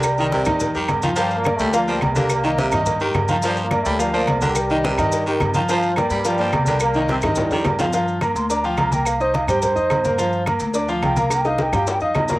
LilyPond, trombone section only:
\new Staff \with { instrumentName = "Trombone section" } { \clef bass \time 4/4 \key g \minor \tempo 4 = 213 <g, g>2~ <g, g>8 r4. | \tuplet 3/2 { <g, g>4 <bes, bes>8~ <bes, bes>8 <a, a>4 } <bes, bes>8 <g, g>4 <bes, bes>8~ | <bes, bes>2~ <bes, bes>8 r4. | \tuplet 3/2 { <g, g>4 <bes, bes>8~ <bes, bes>8 <a, a>4 } <g, g>8 <f f'>4 <g, g>8~ |
<g, g>2~ <g, g>8 <ees ees'>4 r8 | <f f'>4 <g, g>8 <g, g>2~ <g, g>8 | <bes, bes>4 <c c'>8 <g, g>2 r8 | r1 |
r1 | r1 | r1 | }